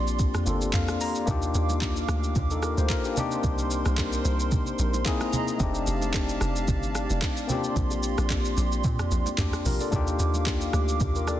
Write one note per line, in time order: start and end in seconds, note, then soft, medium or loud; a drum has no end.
0.00 0.32 A#1 loud
0.00 0.42 A#3 medium
0.00 0.43 C4 medium
0.00 0.44 D4 medium
0.00 0.44 F4 medium
0.00 0.45 G4 loud
0.00 1.24 G4 medium
0.00 1.24 D5 medium
0.00 1.25 C6 medium
0.07 shaker medium
0.19 kick loud
0.19 shaker medium
0.34 cross-stick loud
0.34 mid tom medium
0.34 shaker soft
0.46 0.72 G1 medium
0.46 1.24 A#3 medium
0.46 1.28 C4 medium
0.46 1.26 D4 medium
0.46 1.28 F4 medium
0.46 1.28 A4 medium
0.46 shaker medium
0.61 shaker medium
0.73 0.99 F5 medium
0.73 kick medium
0.73 clap medium
0.73 mid tom loud
0.73 shaker medium
0.88 cross-stick loud
0.88 shaker soft
1.01 1.26 A#5 medium
1.01 open hi-hat medium
1.01 shaker medium
1.15 shaker medium
1.26 1.53 D#2 loud
1.26 3.12 A#3 medium
1.26 2.33 D4 medium
1.26 2.34 D#4 medium
1.26 2.34 F4 medium
1.26 3.15 G4 medium
1.26 3.15 F5 medium
1.26 3.15 D6 medium
1.26 kick loud
1.26 low conga medium
1.26 shaker medium
1.31 2.35 G4 medium
1.42 shaker medium
1.55 2.06 D#2 loud
1.55 shaker loud
1.69 low bongo medium
1.69 shaker medium
1.82 kick medium
1.82 clap loud
1.82 high bongo medium
1.82 shaker medium
1.96 shaker medium
2.08 2.34 D2 loud
2.08 cross-stick loud
2.08 low bongo medium
2.08 shaker medium
2.24 shaker medium
2.35 2.75 D#2 loud
2.35 kick loud
2.35 low conga medium
2.35 shaker medium
2.51 2.63 D#4 medium
2.51 2.62 A4 medium
2.51 shaker soft
2.63 2.77 F4 medium
2.63 2.77 A#4 medium
2.63 cross-stick loud
2.63 shaker medium
2.77 2.89 D2 medium
2.77 2.90 G4 medium
2.77 2.89 C5 medium
2.77 low bongo medium
2.77 shaker medium
2.89 3.04 F4 medium
2.89 3.04 A#4 medium
2.89 kick medium
2.89 clap medium
2.89 high bongo medium
2.89 shaker medium
3.04 3.16 D4 medium
3.04 3.19 G4 medium
3.04 shaker medium
3.15 5.01 A#3 medium
3.15 5.02 C4 medium
3.15 5.02 D4 medium
3.15 5.03 D#4 medium
3.15 5.04 A#4 medium
3.15 5.04 C5 medium
3.15 5.04 C6 medium
3.15 low conga medium
3.15 shaker medium
3.20 5.04 G4 loud
3.31 shaker medium
3.44 3.83 C2 loud
3.44 kick loud
3.44 low conga medium
3.44 shaker medium
3.58 shaker medium
3.71 shaker loud
3.86 4.23 C2 loud
3.86 cross-stick loud
3.86 low bongo medium
3.86 shaker medium
3.98 kick medium
3.98 clap medium
3.98 high bongo medium
3.98 shaker medium
4.13 shaker medium
4.25 4.64 C2 loud
4.25 low bongo medium
4.25 shaker medium
4.40 shaker medium
4.52 kick loud
4.52 low conga medium
4.52 shaker medium
4.67 shaker soft
4.79 5.05 A#1 loud
4.79 shaker medium
4.94 low bongo medium
4.94 shaker medium
5.05 5.60 A#3 medium
5.05 5.58 C4 medium
5.05 5.60 D#4 medium
5.05 5.61 E4 medium
5.05 5.60 G#4 medium
5.05 5.61 G#4 medium
5.05 5.60 D#5 medium
5.05 5.60 A#5 medium
5.05 kick medium
5.05 clap medium
5.05 high bongo medium
5.05 shaker medium
5.21 cross-stick loud
5.21 shaker soft
5.33 low conga medium
5.33 shaker medium
5.48 shaker medium
5.58 5.86 F1 loud
5.58 7.44 A3 medium
5.58 7.45 C4 medium
5.58 7.46 D4 medium
5.58 7.46 D#4 medium
5.58 7.47 G4 medium
5.58 9.89 D5 medium
5.58 7.47 F5 medium
5.58 7.47 A5 medium
5.58 kick loud
5.58 low conga medium
5.58 shaker medium
5.63 7.47 G4 medium
5.75 shaker medium
5.87 6.38 F1 loud
5.87 shaker loud
6.02 low bongo medium
6.02 shaker medium
6.14 kick medium
6.14 clap medium
6.14 high bongo medium
6.14 shaker medium
6.29 shaker medium
6.41 6.67 F1 medium
6.41 cross-stick loud
6.41 low bongo medium
6.41 shaker medium
6.56 shaker medium
6.68 7.08 G1 loud
6.68 kick loud
6.68 low conga medium
6.68 shaker medium
6.83 shaker soft
6.95 cross-stick loud
6.95 shaker medium
7.10 7.22 F1 medium
7.10 low bongo medium
7.10 shaker medium
7.22 kick medium
7.22 clap medium
7.22 high bongo medium
7.22 shaker medium
7.37 shaker soft
7.47 9.60 A#3 medium
7.47 9.61 C4 medium
7.47 7.57 C#4 medium
7.47 9.36 F4 medium
7.47 9.90 G4 medium
7.47 9.90 C6 medium
7.47 low conga medium
7.47 shaker medium
7.52 9.38 D4 medium
7.52 9.36 G4 medium
7.64 shaker medium
7.76 8.16 A#1 loud
7.76 kick loud
7.76 low conga medium
7.76 shaker medium
7.91 high bongo medium
7.91 shaker medium
8.03 shaker loud
8.18 8.55 A#1 loud
8.18 cross-stick loud
8.18 low bongo medium
8.18 shaker medium
8.30 kick medium
8.30 clap loud
8.30 high bongo medium
8.30 shaker medium
8.45 shaker medium
8.57 8.83 A#1 loud
8.57 low bongo medium
8.57 shaker medium
8.72 shaker medium
8.84 8.98 A#2 loud
8.84 kick loud
8.84 low conga medium
8.84 shaker medium
8.99 cross-stick loud
8.99 mid tom medium
8.99 shaker soft
9.11 9.25 A#1 loud
9.11 shaker medium
9.26 low bongo medium
9.26 shaker medium
9.38 9.52 D2 loud
9.38 9.65 D4 medium
9.38 9.64 G4 medium
9.38 kick medium
9.38 clap medium
9.38 mid tom medium
9.38 high bongo medium
9.38 shaker medium
9.53 cross-stick medium
9.53 shaker medium
9.65 9.79 A#1 loud
9.65 9.80 F4 medium
9.65 9.80 A#4 medium
9.65 open hi-hat medium
9.65 low conga medium
9.65 shaker medium
9.80 10.07 A4 medium
9.80 10.06 D5 medium
9.80 shaker medium
9.90 10.18 D#2 loud
9.90 11.40 A#3 medium
9.90 11.40 D4 medium
9.90 11.40 D#4 medium
9.90 10.99 F4 medium
9.90 11.40 G4 medium
9.90 11.40 F5 medium
9.90 11.40 D6 medium
9.90 kick loud
9.90 low conga medium
9.90 shaker medium
9.96 11.00 G4 medium
10.07 shaker medium
10.19 10.71 D#2 loud
10.19 shaker loud
10.34 low bongo medium
10.34 shaker medium
10.46 kick medium
10.46 clap medium
10.46 high bongo medium
10.46 shaker medium
10.61 shaker medium
10.73 10.99 D2 medium
10.73 cross-stick loud
10.73 low bongo medium
10.73 shaker medium
10.88 shaker medium
11.00 11.40 D#2 loud
11.00 kick loud
11.00 low conga medium
11.00 shaker medium
11.15 11.28 F4 medium
11.15 11.27 A#4 medium
11.15 shaker soft
11.27 11.40 A4 medium
11.27 11.40 D5 medium
11.27 cross-stick loud
11.27 shaker medium